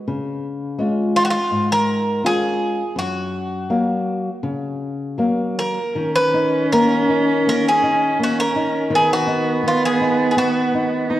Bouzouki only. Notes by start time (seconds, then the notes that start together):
1.16 F4
1.25 F#4
1.30 F4
1.72 A#4
2.26 G#4
2.99 F#4
5.59 A#4
6.16 B4
6.72 A#4
7.49 A#4
7.69 G#4
8.23 F#4
8.40 A#4
8.95 G#4
9.13 F#4
9.68 F4
9.85 G#4
10.31 G#4
10.38 F#4